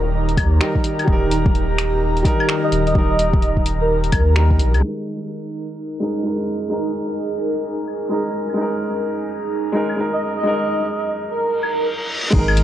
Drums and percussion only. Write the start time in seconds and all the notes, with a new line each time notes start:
0.29 closed hi-hat
0.37 kick, closed hi-hat, claves
0.61 finger snap
0.75 kick
0.84 closed hi-hat
0.99 closed hi-hat, claves
1.07 kick
1.31 closed hi-hat
1.46 kick
1.55 closed hi-hat
1.78 finger snap, closed hi-hat
2.17 closed hi-hat
2.25 kick, closed hi-hat
2.40 claves
2.49 finger snap
2.72 closed hi-hat
2.87 closed hi-hat
2.95 kick
3.19 closed hi-hat
3.33 kick
3.42 closed hi-hat
3.57 kick
3.66 closed hi-hat
4.04 closed hi-hat
4.12 kick, closed hi-hat, claves
4.36 finger snap
4.51 kick
4.59 closed hi-hat
4.74 closed hi-hat, claves
6.15 claves
7.87 claves
8.49 claves
9.89 claves
11.63 claves
12.33 kick, crash
12.48 claves
12.57 closed hi-hat